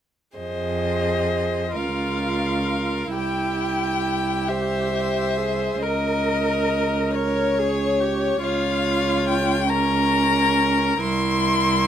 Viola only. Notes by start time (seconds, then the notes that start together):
0.37 G#4
1.76 F4
3.13 E4
4.49 G4
4.93 G4
5.37 G#4
5.83 A#4
7.15 A#4
7.59 G#4
8.01 G4
8.43 F4
9.70 C#4
11.02 E4